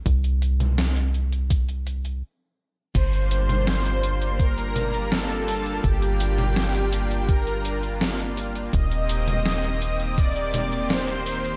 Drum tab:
CC |----------------|x---------------|----------------|----------------|
HH |xxxxxxxxxxxx----|xxxxxxxxxxxxxxox|xxxxxxxxxxxxxxox|xxxxxxxxxxxxxxox|
SD |----o-----------|----o-------o---|----o-------o---|----o-------o---|
T2 |---o------------|---o------o-----|---o------------|---o------o-----|
BD |o-------o-------|o-------o-------|o-------o-------|o-------o-------|